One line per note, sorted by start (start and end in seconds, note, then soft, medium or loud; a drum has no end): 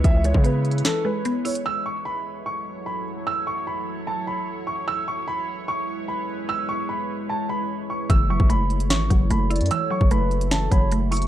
0.00 0.24 G#3 medium
0.00 1.62 G#3 medium
0.00 0.43 B3 medium
0.00 0.85 E4 medium
0.00 1.62 E4 medium
0.00 1.62 B4 medium
0.00 1.62 C#5 medium
0.04 0.33 C#2 loud
0.04 0.83 E3 loud
0.04 0.22 E5 loud
0.04 kick loud
0.04 closed hi-hat medium
0.24 1.04 G#3 medium
0.24 0.42 C#5 medium
0.24 closed hi-hat medium
0.34 0.83 C#3 loud
0.34 kick loud
0.44 1.24 B3 medium
0.44 0.83 B4 medium
0.44 closed hi-hat medium
0.65 closed hi-hat soft
0.71 closed hi-hat medium
0.78 closed hi-hat medium
0.85 1.65 E3 medium
0.85 1.02 A4 medium
0.85 snare loud
0.85 closed hi-hat medium
1.05 1.65 G#3 medium
1.05 1.43 B4 medium
1.25 1.66 B3 medium
1.25 closed hi-hat medium
1.45 1.65 E4 medium
1.45 1.63 C#5 medium
1.45 closed hi-hat medium
1.45 open hi-hat medium
1.55 closed hi-hat medium
1.65 4.84 F#3 medium
1.65 8.06 E4 medium
1.65 4.84 A4 medium
1.65 11.28 C#5 medium
1.65 1.83 E6 loud
1.86 2.03 C#6 medium
2.05 2.43 B5 medium
2.46 2.84 C#6 medium
2.86 3.03 B5 medium
3.27 3.44 E6 loud
3.47 3.64 C#6 medium
3.67 4.05 B5 medium
4.07 4.24 A5 medium
4.27 4.65 B5 medium
4.67 4.84 C#6 medium
4.88 8.06 G#3 medium
4.88 8.06 B4 medium
4.88 5.05 E6 loud
5.08 5.25 C#6 medium
5.28 5.66 B5 medium
5.68 6.06 C#6 medium
6.08 6.25 B5 medium
6.49 6.66 E6 loud
6.69 6.86 C#6 medium
6.89 7.27 B5 medium
7.29 7.46 A5 medium
7.49 7.87 B5 medium
7.90 8.07 C#6 medium
8.10 8.39 F#1 loud
8.10 8.89 E3 loud
8.10 11.28 F#3 medium
8.10 11.28 E4 medium
8.10 11.28 A4 medium
8.10 8.27 E6 loud
8.10 kick loud
8.10 closed hi-hat medium
8.30 9.09 F#3 medium
8.30 8.49 E5 medium
8.30 8.47 C#6 medium
8.40 8.92 F#1 loud
8.40 kick loud
8.49 9.29 A3 medium
8.49 8.88 B5 medium
8.49 closed hi-hat medium
8.70 closed hi-hat soft
8.80 closed hi-hat medium
8.90 9.09 G#1 loud
8.90 9.70 E3 loud
8.90 9.28 C#6 medium
8.90 snare loud
8.90 closed hi-hat medium
9.10 9.30 F#1 loud
9.10 9.89 F#3 medium
9.10 kick loud
9.10 closed hi-hat medium
9.30 9.62 F#1 loud
9.30 10.10 A3 medium
9.30 9.48 B5 medium
9.30 closed hi-hat medium
9.50 10.51 E4 medium
9.50 9.70 D5 medium
9.50 closed hi-hat medium
9.56 closed hi-hat medium
9.61 9.70 F#2 loud
9.61 closed hi-hat medium
9.66 closed hi-hat medium
9.71 10.50 E3 loud
9.71 10.09 C#5 loud
9.71 9.88 E6 loud
9.71 closed hi-hat medium
9.91 10.70 F#3 medium
9.91 10.08 C#6 medium
10.01 10.69 F#1 loud
10.01 kick loud
10.11 10.91 A3 medium
10.11 10.49 B4 medium
10.11 10.49 B5 medium
10.11 closed hi-hat medium
10.31 closed hi-hat soft
10.41 closed hi-hat medium
10.51 11.28 E3 medium
10.51 10.70 A4 medium
10.51 10.69 A5 medium
10.51 snare loud
10.51 closed hi-hat medium
10.71 11.28 F#1 loud
10.71 11.28 F#3 medium
10.71 10.90 C#5 medium
10.71 11.09 B5 medium
10.71 kick loud
10.71 closed hi-hat medium
10.92 11.28 A3 medium
10.92 closed hi-hat medium
11.11 11.28 E4 medium
11.11 11.28 C#6 medium
11.11 closed hi-hat medium
11.11 open hi-hat medium
11.17 closed hi-hat medium
11.22 closed hi-hat medium